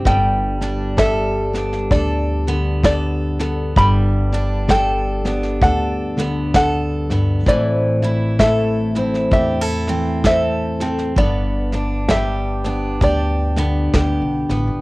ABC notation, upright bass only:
X:1
M:4/4
L:1/16
Q:"Swing" 1/4=65
K:G
V:1 name="Upright bass" clef=bass
G,,,8 D,,8 | G,,,8 D,,8 | A,,,8 E,,8 | G,,,8 D,,4 D,, B,,, A,,, G,,, |]